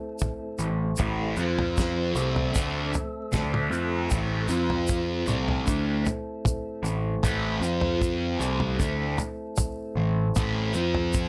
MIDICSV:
0, 0, Header, 1, 7, 480
1, 0, Start_track
1, 0, Key_signature, 0, "minor"
1, 0, Tempo, 781047
1, 604, Time_signature, 4, 2, 24, 8
1, 6935, End_track
2, 0, Start_track
2, 0, Title_t, "Tonewheel organ"
2, 0, Program_c, 0, 16
2, 0, Note_on_c, 0, 57, 64
2, 0, Note_on_c, 0, 60, 60
2, 0, Note_on_c, 0, 64, 60
2, 0, Note_on_c, 0, 69, 71
2, 827, Note_off_c, 0, 60, 0
2, 831, Note_off_c, 0, 64, 0
2, 833, Note_off_c, 0, 57, 0
2, 834, Note_off_c, 0, 69, 0
2, 840, Note_on_c, 0, 65, 65
2, 842, Note_on_c, 0, 60, 62
2, 842, Note_on_c, 0, 72, 74
2, 843, Note_on_c, 0, 53, 75
2, 1317, Note_off_c, 0, 65, 0
2, 1318, Note_off_c, 0, 53, 0
2, 1318, Note_off_c, 0, 72, 0
2, 1326, Note_on_c, 0, 69, 76
2, 1326, Note_on_c, 0, 76, 62
2, 1327, Note_on_c, 0, 57, 61
2, 2750, Note_off_c, 0, 69, 0
2, 2750, Note_off_c, 0, 76, 0
2, 2751, Note_off_c, 0, 57, 0
2, 2770, Note_on_c, 0, 53, 70
2, 2770, Note_on_c, 0, 72, 85
2, 2774, Note_on_c, 0, 65, 65
2, 3219, Note_off_c, 0, 60, 0
2, 3239, Note_on_c, 0, 60, 58
2, 3240, Note_on_c, 0, 69, 75
2, 3242, Note_off_c, 0, 53, 0
2, 3242, Note_off_c, 0, 72, 0
2, 3244, Note_off_c, 0, 65, 0
2, 3244, Note_on_c, 0, 57, 62
2, 3244, Note_on_c, 0, 64, 62
2, 4667, Note_off_c, 0, 69, 0
2, 4669, Note_off_c, 0, 57, 0
2, 4669, Note_off_c, 0, 64, 0
2, 4684, Note_on_c, 0, 53, 67
2, 4685, Note_on_c, 0, 72, 80
2, 4686, Note_on_c, 0, 65, 71
2, 5159, Note_off_c, 0, 53, 0
2, 5160, Note_off_c, 0, 65, 0
2, 5160, Note_off_c, 0, 72, 0
2, 5160, Note_on_c, 0, 64, 58
2, 5165, Note_on_c, 0, 69, 73
2, 5167, Note_on_c, 0, 57, 63
2, 6587, Note_off_c, 0, 64, 0
2, 6589, Note_off_c, 0, 69, 0
2, 6590, Note_off_c, 0, 57, 0
2, 6612, Note_on_c, 0, 72, 76
2, 6613, Note_on_c, 0, 65, 67
2, 6615, Note_on_c, 0, 53, 65
2, 6935, Note_off_c, 0, 53, 0
2, 6935, Note_off_c, 0, 60, 0
2, 6935, Note_off_c, 0, 65, 0
2, 6935, Note_off_c, 0, 72, 0
2, 6935, End_track
3, 0, Start_track
3, 0, Title_t, "Distorted electric guitar"
3, 0, Program_c, 1, 30
3, 362, Note_on_c, 1, 45, 61
3, 364, Note_on_c, 1, 52, 60
3, 555, Note_off_c, 1, 45, 0
3, 556, Note_off_c, 1, 52, 0
3, 600, Note_on_c, 1, 45, 79
3, 605, Note_on_c, 1, 52, 88
3, 610, Note_on_c, 1, 57, 92
3, 835, Note_off_c, 1, 45, 0
3, 837, Note_off_c, 1, 52, 0
3, 840, Note_off_c, 1, 57, 0
3, 849, Note_on_c, 1, 53, 97
3, 851, Note_on_c, 1, 60, 95
3, 856, Note_on_c, 1, 65, 99
3, 1319, Note_off_c, 1, 53, 0
3, 1320, Note_off_c, 1, 60, 0
3, 1323, Note_off_c, 1, 65, 0
3, 1327, Note_on_c, 1, 48, 88
3, 1330, Note_on_c, 1, 55, 90
3, 1333, Note_on_c, 1, 60, 87
3, 1555, Note_off_c, 1, 48, 0
3, 1558, Note_on_c, 1, 50, 77
3, 1560, Note_off_c, 1, 55, 0
3, 1561, Note_off_c, 1, 60, 0
3, 1564, Note_on_c, 1, 57, 77
3, 1569, Note_on_c, 1, 62, 95
3, 1794, Note_off_c, 1, 50, 0
3, 1797, Note_off_c, 1, 57, 0
3, 1800, Note_off_c, 1, 62, 0
3, 2044, Note_on_c, 1, 50, 85
3, 2048, Note_on_c, 1, 57, 99
3, 2052, Note_on_c, 1, 62, 97
3, 2277, Note_off_c, 1, 50, 0
3, 2279, Note_off_c, 1, 57, 0
3, 2281, Note_off_c, 1, 62, 0
3, 2283, Note_on_c, 1, 53, 81
3, 2287, Note_on_c, 1, 60, 85
3, 2287, Note_on_c, 1, 65, 95
3, 2516, Note_off_c, 1, 53, 0
3, 2518, Note_off_c, 1, 60, 0
3, 2518, Note_off_c, 1, 65, 0
3, 2523, Note_on_c, 1, 45, 94
3, 2528, Note_on_c, 1, 52, 94
3, 2530, Note_on_c, 1, 57, 99
3, 2756, Note_off_c, 1, 45, 0
3, 2759, Note_off_c, 1, 52, 0
3, 2759, Note_off_c, 1, 57, 0
3, 2759, Note_on_c, 1, 53, 93
3, 2766, Note_on_c, 1, 60, 96
3, 2770, Note_on_c, 1, 65, 98
3, 3234, Note_off_c, 1, 53, 0
3, 3238, Note_off_c, 1, 60, 0
3, 3240, Note_off_c, 1, 65, 0
3, 3241, Note_on_c, 1, 48, 88
3, 3246, Note_on_c, 1, 55, 86
3, 3249, Note_on_c, 1, 60, 105
3, 3475, Note_off_c, 1, 48, 0
3, 3477, Note_off_c, 1, 55, 0
3, 3477, Note_on_c, 1, 50, 81
3, 3479, Note_off_c, 1, 60, 0
3, 3484, Note_on_c, 1, 57, 88
3, 3485, Note_on_c, 1, 62, 90
3, 3713, Note_off_c, 1, 50, 0
3, 3717, Note_off_c, 1, 57, 0
3, 3717, Note_off_c, 1, 62, 0
3, 4195, Note_on_c, 1, 45, 59
3, 4197, Note_on_c, 1, 52, 61
3, 4391, Note_off_c, 1, 45, 0
3, 4392, Note_off_c, 1, 52, 0
3, 4445, Note_on_c, 1, 45, 81
3, 4448, Note_on_c, 1, 52, 100
3, 4452, Note_on_c, 1, 57, 99
3, 4677, Note_off_c, 1, 45, 0
3, 4678, Note_off_c, 1, 52, 0
3, 4680, Note_off_c, 1, 57, 0
3, 4682, Note_on_c, 1, 53, 98
3, 4685, Note_on_c, 1, 60, 92
3, 4691, Note_on_c, 1, 65, 93
3, 5155, Note_off_c, 1, 53, 0
3, 5157, Note_off_c, 1, 60, 0
3, 5160, Note_off_c, 1, 65, 0
3, 5163, Note_on_c, 1, 48, 88
3, 5166, Note_on_c, 1, 55, 94
3, 5172, Note_on_c, 1, 60, 107
3, 5395, Note_off_c, 1, 48, 0
3, 5397, Note_off_c, 1, 55, 0
3, 5397, Note_on_c, 1, 50, 83
3, 5400, Note_off_c, 1, 60, 0
3, 5403, Note_on_c, 1, 57, 89
3, 5406, Note_on_c, 1, 62, 99
3, 5633, Note_off_c, 1, 50, 0
3, 5636, Note_off_c, 1, 57, 0
3, 5638, Note_off_c, 1, 62, 0
3, 6126, Note_on_c, 1, 45, 60
3, 6126, Note_on_c, 1, 52, 68
3, 6316, Note_off_c, 1, 45, 0
3, 6317, Note_off_c, 1, 52, 0
3, 6366, Note_on_c, 1, 45, 83
3, 6370, Note_on_c, 1, 52, 88
3, 6378, Note_on_c, 1, 57, 99
3, 6597, Note_off_c, 1, 45, 0
3, 6599, Note_off_c, 1, 52, 0
3, 6603, Note_off_c, 1, 57, 0
3, 6605, Note_on_c, 1, 53, 86
3, 6609, Note_on_c, 1, 60, 99
3, 6609, Note_on_c, 1, 65, 109
3, 6935, Note_off_c, 1, 53, 0
3, 6935, Note_off_c, 1, 60, 0
3, 6935, Note_off_c, 1, 65, 0
3, 6935, End_track
4, 0, Start_track
4, 0, Title_t, "Picked electric bass"
4, 0, Program_c, 2, 34
4, 363, Note_on_c, 2, 33, 78
4, 587, Note_off_c, 2, 33, 0
4, 612, Note_on_c, 2, 33, 87
4, 832, Note_off_c, 2, 33, 0
4, 842, Note_on_c, 2, 41, 93
4, 1298, Note_off_c, 2, 41, 0
4, 1322, Note_on_c, 2, 36, 86
4, 1546, Note_off_c, 2, 36, 0
4, 1573, Note_on_c, 2, 38, 80
4, 1792, Note_off_c, 2, 38, 0
4, 2048, Note_on_c, 2, 38, 84
4, 2269, Note_off_c, 2, 38, 0
4, 2277, Note_on_c, 2, 41, 102
4, 2504, Note_off_c, 2, 41, 0
4, 2528, Note_on_c, 2, 33, 88
4, 2749, Note_off_c, 2, 33, 0
4, 2757, Note_on_c, 2, 41, 91
4, 3215, Note_off_c, 2, 41, 0
4, 3242, Note_on_c, 2, 36, 86
4, 3466, Note_off_c, 2, 36, 0
4, 3485, Note_on_c, 2, 38, 84
4, 3708, Note_off_c, 2, 38, 0
4, 4196, Note_on_c, 2, 33, 80
4, 4422, Note_off_c, 2, 33, 0
4, 4446, Note_on_c, 2, 33, 80
4, 4668, Note_off_c, 2, 33, 0
4, 4674, Note_on_c, 2, 41, 91
4, 5134, Note_off_c, 2, 41, 0
4, 5161, Note_on_c, 2, 36, 84
4, 5385, Note_off_c, 2, 36, 0
4, 5406, Note_on_c, 2, 38, 91
4, 5628, Note_off_c, 2, 38, 0
4, 6118, Note_on_c, 2, 33, 82
4, 6344, Note_off_c, 2, 33, 0
4, 6370, Note_on_c, 2, 33, 92
4, 6590, Note_off_c, 2, 33, 0
4, 6604, Note_on_c, 2, 41, 88
4, 6935, Note_off_c, 2, 41, 0
4, 6935, End_track
5, 0, Start_track
5, 0, Title_t, "Muted distorted electric guitar strokes"
5, 1805, Note_on_c, 9, 29, 59
5, 1866, Note_off_c, 9, 29, 0
5, 3720, Note_on_c, 9, 29, 52
5, 3782, Note_off_c, 9, 29, 0
5, 5644, Note_on_c, 9, 29, 53
5, 5705, Note_off_c, 9, 29, 0
5, 6935, End_track
6, 0, Start_track
6, 0, Title_t, "Muted picked electric bass strokes"
6, 1803, Note_on_c, 9, 29, 42
6, 1864, Note_off_c, 9, 29, 0
6, 3724, Note_on_c, 9, 29, 45
6, 3785, Note_off_c, 9, 29, 0
6, 5642, Note_on_c, 9, 29, 43
6, 5703, Note_off_c, 9, 29, 0
6, 6935, End_track
7, 0, Start_track
7, 0, Title_t, "Drums"
7, 117, Note_on_c, 9, 82, 85
7, 133, Note_on_c, 9, 43, 87
7, 133, Note_on_c, 9, 47, 85
7, 134, Note_on_c, 9, 36, 108
7, 178, Note_off_c, 9, 82, 0
7, 195, Note_off_c, 9, 43, 0
7, 195, Note_off_c, 9, 47, 0
7, 196, Note_off_c, 9, 36, 0
7, 361, Note_on_c, 9, 82, 77
7, 422, Note_off_c, 9, 82, 0
7, 593, Note_on_c, 9, 82, 95
7, 613, Note_on_c, 9, 43, 89
7, 614, Note_on_c, 9, 36, 115
7, 654, Note_off_c, 9, 82, 0
7, 674, Note_off_c, 9, 43, 0
7, 675, Note_off_c, 9, 36, 0
7, 840, Note_on_c, 9, 82, 64
7, 901, Note_off_c, 9, 82, 0
7, 975, Note_on_c, 9, 43, 88
7, 1036, Note_off_c, 9, 43, 0
7, 1089, Note_on_c, 9, 82, 80
7, 1093, Note_on_c, 9, 36, 110
7, 1103, Note_on_c, 9, 38, 84
7, 1151, Note_off_c, 9, 82, 0
7, 1155, Note_off_c, 9, 36, 0
7, 1165, Note_off_c, 9, 38, 0
7, 1325, Note_on_c, 9, 82, 68
7, 1387, Note_off_c, 9, 82, 0
7, 1451, Note_on_c, 9, 43, 93
7, 1513, Note_off_c, 9, 43, 0
7, 1565, Note_on_c, 9, 82, 85
7, 1572, Note_on_c, 9, 36, 113
7, 1626, Note_off_c, 9, 82, 0
7, 1633, Note_off_c, 9, 36, 0
7, 1804, Note_on_c, 9, 82, 71
7, 1814, Note_on_c, 9, 43, 85
7, 1865, Note_off_c, 9, 82, 0
7, 1875, Note_off_c, 9, 43, 0
7, 2043, Note_on_c, 9, 82, 84
7, 2052, Note_on_c, 9, 36, 107
7, 2053, Note_on_c, 9, 43, 94
7, 2053, Note_on_c, 9, 47, 85
7, 2060, Note_on_c, 9, 38, 77
7, 2104, Note_off_c, 9, 82, 0
7, 2113, Note_off_c, 9, 36, 0
7, 2115, Note_off_c, 9, 43, 0
7, 2115, Note_off_c, 9, 47, 0
7, 2121, Note_off_c, 9, 38, 0
7, 2176, Note_on_c, 9, 47, 88
7, 2237, Note_off_c, 9, 47, 0
7, 2288, Note_on_c, 9, 82, 71
7, 2349, Note_off_c, 9, 82, 0
7, 2522, Note_on_c, 9, 82, 99
7, 2531, Note_on_c, 9, 36, 120
7, 2531, Note_on_c, 9, 43, 90
7, 2583, Note_off_c, 9, 82, 0
7, 2592, Note_off_c, 9, 36, 0
7, 2592, Note_off_c, 9, 43, 0
7, 2755, Note_on_c, 9, 82, 62
7, 2817, Note_off_c, 9, 82, 0
7, 2888, Note_on_c, 9, 43, 84
7, 2949, Note_off_c, 9, 43, 0
7, 2995, Note_on_c, 9, 82, 89
7, 3008, Note_on_c, 9, 36, 110
7, 3056, Note_off_c, 9, 82, 0
7, 3069, Note_off_c, 9, 36, 0
7, 3237, Note_on_c, 9, 82, 69
7, 3253, Note_on_c, 9, 47, 87
7, 3299, Note_off_c, 9, 82, 0
7, 3315, Note_off_c, 9, 47, 0
7, 3370, Note_on_c, 9, 43, 78
7, 3432, Note_off_c, 9, 43, 0
7, 3484, Note_on_c, 9, 82, 87
7, 3489, Note_on_c, 9, 36, 106
7, 3546, Note_off_c, 9, 82, 0
7, 3551, Note_off_c, 9, 36, 0
7, 3724, Note_on_c, 9, 82, 68
7, 3728, Note_on_c, 9, 43, 92
7, 3785, Note_off_c, 9, 82, 0
7, 3789, Note_off_c, 9, 43, 0
7, 3964, Note_on_c, 9, 43, 82
7, 3964, Note_on_c, 9, 47, 83
7, 3968, Note_on_c, 9, 36, 116
7, 3972, Note_on_c, 9, 82, 83
7, 4026, Note_off_c, 9, 43, 0
7, 4026, Note_off_c, 9, 47, 0
7, 4030, Note_off_c, 9, 36, 0
7, 4034, Note_off_c, 9, 82, 0
7, 4208, Note_on_c, 9, 82, 74
7, 4270, Note_off_c, 9, 82, 0
7, 4444, Note_on_c, 9, 43, 86
7, 4447, Note_on_c, 9, 36, 108
7, 4451, Note_on_c, 9, 82, 84
7, 4505, Note_off_c, 9, 43, 0
7, 4509, Note_off_c, 9, 36, 0
7, 4512, Note_off_c, 9, 82, 0
7, 4688, Note_on_c, 9, 82, 67
7, 4750, Note_off_c, 9, 82, 0
7, 4802, Note_on_c, 9, 43, 87
7, 4863, Note_off_c, 9, 43, 0
7, 4926, Note_on_c, 9, 36, 112
7, 4929, Note_on_c, 9, 82, 77
7, 4988, Note_off_c, 9, 36, 0
7, 4991, Note_off_c, 9, 82, 0
7, 5167, Note_on_c, 9, 82, 72
7, 5229, Note_off_c, 9, 82, 0
7, 5285, Note_on_c, 9, 43, 91
7, 5347, Note_off_c, 9, 43, 0
7, 5407, Note_on_c, 9, 36, 114
7, 5409, Note_on_c, 9, 82, 81
7, 5468, Note_off_c, 9, 36, 0
7, 5470, Note_off_c, 9, 82, 0
7, 5643, Note_on_c, 9, 43, 87
7, 5644, Note_on_c, 9, 82, 74
7, 5705, Note_off_c, 9, 43, 0
7, 5706, Note_off_c, 9, 82, 0
7, 5879, Note_on_c, 9, 82, 92
7, 5885, Note_on_c, 9, 43, 85
7, 5885, Note_on_c, 9, 47, 74
7, 5889, Note_on_c, 9, 36, 106
7, 5941, Note_off_c, 9, 82, 0
7, 5946, Note_off_c, 9, 43, 0
7, 5946, Note_off_c, 9, 47, 0
7, 5950, Note_off_c, 9, 36, 0
7, 6363, Note_on_c, 9, 82, 105
7, 6368, Note_on_c, 9, 43, 86
7, 6371, Note_on_c, 9, 36, 117
7, 6425, Note_off_c, 9, 82, 0
7, 6429, Note_off_c, 9, 43, 0
7, 6432, Note_off_c, 9, 36, 0
7, 6599, Note_on_c, 9, 82, 73
7, 6660, Note_off_c, 9, 82, 0
7, 6727, Note_on_c, 9, 43, 82
7, 6788, Note_off_c, 9, 43, 0
7, 6841, Note_on_c, 9, 82, 80
7, 6850, Note_on_c, 9, 36, 123
7, 6903, Note_off_c, 9, 82, 0
7, 6911, Note_off_c, 9, 36, 0
7, 6935, End_track
0, 0, End_of_file